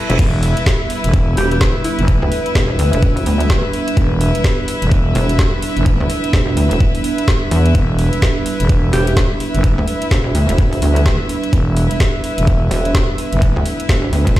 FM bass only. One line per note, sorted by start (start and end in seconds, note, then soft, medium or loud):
0.19 0.55 E1 medium
1.04 1.36 E1 medium
1.99 2.20 F#1 medium
3.97 4.33 E1 loud
4.82 5.14 E1 loud
5.77 5.98 F#1 loud
7.75 8.11 E1 loud
8.60 8.92 E1 loud
9.55 9.76 F#1 loud
11.53 11.89 E1 loud
12.38 12.70 E1 loud
13.33 13.54 F#1 loud
14.36 14.40 E1 loud